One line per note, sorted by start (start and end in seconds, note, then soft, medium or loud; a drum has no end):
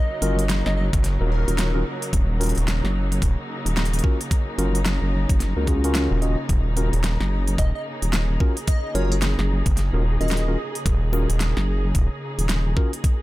0.00 13.22 C#3 medium
0.00 6.49 F#3 medium
0.00 13.22 A#3 medium
0.00 13.22 D#4 medium
0.00 0.63 D#5 loud
0.22 0.63 F#1 loud
0.22 0.42 C#4 loud
0.22 0.42 F4 loud
0.22 0.42 F#4 medium
0.22 0.42 A#4 loud
0.22 closed hi-hat medium
0.39 closed hi-hat medium
0.49 snare loud
0.49 closed hi-hat medium
0.66 0.91 F#1 loud
0.66 0.73 D#5 medium
0.66 snare medium
0.77 0.87 D#5 medium
0.93 1.18 F#1 loud
0.93 kick loud
0.93 closed hi-hat medium
1.04 snare soft
1.04 closed hi-hat medium
1.21 1.45 D#1 loud
1.21 1.30 C#4 medium
1.21 1.30 F4 medium
1.21 1.30 F#4 medium
1.21 1.30 A#4 medium
1.32 2.09 A#4 loud
1.48 1.84 D#1 medium
1.48 1.71 C#4 medium
1.48 1.71 F4 medium
1.48 1.71 F#4 medium
1.48 1.71 A#4 medium
1.48 closed hi-hat medium
1.58 snare loud
1.58 closed hi-hat medium
1.75 1.84 C#4 medium
1.75 1.84 F4 medium
1.75 1.84 F#4 medium
1.75 1.84 A#4 loud
2.02 closed hi-hat medium
2.13 2.54 D#1 loud
2.13 kick loud
2.13 closed hi-hat medium
2.40 2.54 C#4 medium
2.40 2.54 F4 medium
2.40 2.54 F#4 medium
2.40 2.54 A#4 loud
2.40 closed hi-hat medium
2.43 closed hi-hat medium
2.46 closed hi-hat soft
2.49 closed hi-hat soft
2.55 2.82 D#1 loud
2.55 closed hi-hat soft
2.58 closed hi-hat medium
2.68 snare loud
2.68 closed hi-hat medium
2.84 3.20 F#1 loud
2.84 snare medium
3.12 closed hi-hat medium
3.22 3.36 D#1 loud
3.22 kick loud
3.22 closed hi-hat medium
3.66 4.02 D#1 medium
3.66 closed hi-hat medium
3.77 snare loud
3.77 closed hi-hat soft
3.85 closed hi-hat soft
3.93 closed hi-hat soft
3.99 closed hi-hat medium
4.04 4.18 C#4 medium
4.04 4.18 F4 medium
4.04 4.18 F#4 medium
4.04 4.18 A#4 loud
4.04 kick loud
4.21 closed hi-hat medium
4.31 kick loud
4.31 closed hi-hat medium
4.58 4.99 F#1 loud
4.58 4.79 C#4 loud
4.58 4.79 F4 medium
4.58 4.79 F#4 medium
4.58 4.79 A#4 loud
4.58 closed hi-hat medium
4.75 closed hi-hat medium
4.86 snare loud
4.86 closed hi-hat medium
5.02 5.27 F#1 loud
5.29 5.54 F#1 loud
5.29 kick loud
5.29 closed hi-hat medium
5.40 snare soft
5.40 closed hi-hat medium
5.56 6.08 C#2 loud
5.56 5.65 C#4 medium
5.56 5.65 F4 medium
5.56 5.65 F#4 medium
5.56 5.65 A#4 medium
5.67 5.82 C#4 medium
5.67 5.82 F4 medium
5.67 5.82 F#4 medium
5.67 5.82 G#4 medium
5.67 kick medium
5.67 closed hi-hat soft
5.84 6.20 C#4 loud
5.84 6.20 F4 medium
5.84 6.20 F#4 medium
5.84 6.20 A#4 loud
5.84 closed hi-hat medium
5.95 snare loud
5.95 closed hi-hat medium
6.11 6.36 D#1 loud
6.22 6.36 C#4 medium
6.22 6.36 F4 medium
6.22 6.36 F#4 medium
6.22 6.36 D#5 loud
6.22 closed hi-hat soft
6.49 6.90 D#1 loud
6.49 13.22 G#4 medium
6.49 kick loud
6.49 closed hi-hat medium
6.77 6.91 C#4 medium
6.77 6.91 F4 medium
6.77 6.91 F#4 medium
6.77 6.91 A#4 loud
6.77 closed hi-hat medium
6.93 7.18 D#1 loud
6.93 closed hi-hat medium
7.04 snare loud
7.04 closed hi-hat medium
7.20 7.57 F#1 loud
7.20 snare medium
7.48 closed hi-hat medium
7.58 7.72 D#1 loud
7.58 7.69 D#5 medium
7.58 kick loud
7.58 closed hi-hat medium
7.75 7.82 D#5 medium
8.02 8.38 D#1 medium
8.02 closed hi-hat medium
8.13 snare loud
8.13 closed hi-hat medium
8.40 8.54 C#4 medium
8.40 8.54 F4 medium
8.40 8.54 F#4 medium
8.40 8.54 A#4 loud
8.40 kick loud
8.57 closed hi-hat medium
8.68 8.94 D#5 loud
8.68 kick loud
8.68 closed hi-hat medium
8.95 9.36 F#1 loud
8.95 9.15 C#4 loud
8.95 9.15 F4 medium
8.95 9.15 F#4 medium
8.95 9.15 A#4 loud
8.95 9.13 C#5 medium
8.95 closed hi-hat medium
9.12 closed hi-hat medium
9.22 snare loud
9.22 closed hi-hat medium
9.39 9.63 F#1 loud
9.39 snare medium
9.66 9.91 F#1 loud
9.66 kick loud
9.66 closed hi-hat soft
9.77 snare soft
9.77 closed hi-hat medium
9.93 10.18 D#1 loud
9.93 10.02 C#4 medium
9.93 10.02 F4 medium
9.93 10.02 F#4 medium
9.93 10.02 A#4 medium
10.20 10.57 D#1 medium
10.20 10.44 C#4 medium
10.20 10.44 F4 medium
10.20 10.44 F#4 medium
10.20 10.44 A#4 medium
10.20 10.59 D#5 loud
10.20 closed hi-hat soft
10.28 snare loud
10.28 closed hi-hat soft
10.31 closed hi-hat medium
10.37 closed hi-hat soft
10.48 10.57 C#4 medium
10.48 10.57 F4 medium
10.48 10.57 F#4 medium
10.48 10.57 A#4 medium
10.75 closed hi-hat soft
10.86 11.27 D#1 loud
10.86 kick loud
10.86 closed hi-hat medium
11.13 11.27 C#4 medium
11.13 11.27 F4 medium
11.13 11.27 F#4 medium
11.13 11.27 A#4 loud
11.13 closed hi-hat medium
11.30 11.54 D#1 loud
11.30 closed hi-hat medium
11.40 snare loud
11.40 closed hi-hat medium
11.57 11.93 F#1 loud
11.57 snare medium
11.95 12.09 D#1 loud
11.95 kick loud
11.95 closed hi-hat medium
12.38 12.75 D#1 loud
12.38 closed hi-hat medium
12.49 snare loud
12.49 closed hi-hat medium
12.77 12.91 C#4 medium
12.77 12.91 F4 medium
12.77 12.91 F#4 medium
12.77 12.91 A#4 loud
12.77 kick loud
12.93 closed hi-hat soft
13.04 kick loud
13.04 closed hi-hat medium